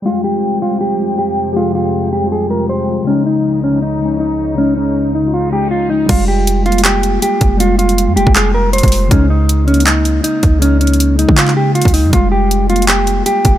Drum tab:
CC |------------------------------------------------------------------------------------------------|------------------------------------------------------------------------------------------------|------------------------------------------------------------------------------------------------|------------------------------------------------------------------------------------------------|
HH |------------------------------------------------------------------------------------------------|------------------------------------------------------------------------------------------------|------------------------------------------------------------------------------------------------|------------------------------------------------------------------------------------------------|
CP |------------------------------------------------------------------------------------------------|------------------------------------------------------------------------------------------------|------------------------------------------------------------------------------------------------|------------------------------------------------------------------------------------------------|
BD |------------------------------------------------------------------------------------------------|------------------------------------------------------------------------------------------------|------------------------------------------------------------------------------------------------|------------------------------------------------------------------------------------------------|

CC |x-----------------------------------------------------------------------------------------------|------------------------------------------------------------------------------------------------|------------------------------------------------------------------------------------------------|------------------------------------------------------------------------------------------------|
HH |x-----------------------x-----------x---x---x---x-----------x-----------x-----------x-----------|x-----------x-----x-----x-----------x-----------x-----------------------x--x--x--x--o-----------|x-----------------------x-----------x---x---x---x-----------x-----------x-----------x-----------|x-----------x---x---x---x-----------x-----------x-----------------------x---x---x---o-----------|
CP |------------------------------------------------x-----------------------------------------------|------------------------------------------------x-----------------------------------------------|------------------------------------------------x-----------------------------------------------|------------------------------------------------x-----x-----------------------------------------|
BD |o-----------------------------------------------------------------------------------o-----------|------------------------------------------o-----------------------------------o-----------------|o-----------------------------------------------------------------------------------o-----------|------------------------------------------o-----------------------------------o-----------------|

CC |------------------------------------------------------------------------------------------------|
HH |x-----------------------x-----------x---x---x---x-----------x-----------x-----------x-----------|
CP |------------------------------------------------x-----------------------------------------------|
BD |o-----------------------------------------------------------------------------------o-----------|